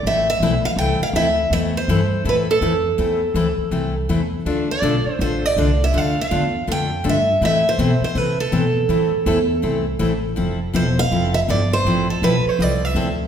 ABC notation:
X:1
M:4/4
L:1/16
Q:"Swing" 1/4=162
K:Am
V:1 name="Steel-string acoustic guitar"
e2 e4 f2 g2 f2 e4 | e2 c6 B2 A6- | A8- A2 z6 | z2 d6 c2 d4 e2 |
f2 f6 g4 e4 | e2 c4 c2 B2 A6- | A8- A2 z6 | z4 c2 f4 e2 d2 c2- |
c2 A2 B2 c2 d2 e6 |]
V:2 name="Steel-string acoustic guitar"
[E,A,CEA]2 z2 [E,A,CEA] z3 [E,A,CEA]2 z2 [E,A,CEA] z3 | [E,A,CEA]2 z2 [E,A,CEA] z3 [E,A,CEA]2 z2 [E,A,CEA] z3 | [E,A,CEA]2 z2 [E,A,CEA] z3 [E,A,CEA]2 z2 [E,A,CEA] z3 | [D,A,DFA]2 z2 [D,A,DFA] z3 [D,A,DFA]2 z2 [D,A,DFA] z3 |
[D,A,DFA]2 z2 [D,A,DFA] z3 [D,A,DFA]2 z2 [D,A,DFA] z3 | [E,A,CEA]2 z2 [E,A,CEA] z3 [E,A,CEA]2 z2 [E,A,CEA] z3 | [E,A,CEA]2 z2 [E,A,CEA] z3 [E,A,CEA]2 z2 [E,A,CEA] z3 | [F,CEA]2 z2 [F,CEA] z3 [F,CEA]2 z2 [F,CEA] z3 |
[F,CEA]2 z2 [F,CEA] z3 [F,CEA]2 z2 [F,CEA] z3 |]
V:3 name="Upright bass" clef=bass
A,,,4 B,,,2 z2 C,,2 z2 D,,4 | E,,4 G,,4 A,,4 F,,4 | E,,4 D,,2 z2 C,,4 E,,4 | D,,4 B,,,2 z2 A,,,4 C,,4 |
D,,4 E,,4 F,,4 G,,4 | A,,4 B,,2 z2 C,4 B,,4 | A,,4 E,,4 C,,4 A,,,4 | F,,,4 E,,,4 F,,,4 G,,,4 |
A,,,4 B,,,2 z2 C,,4 D,,4 |]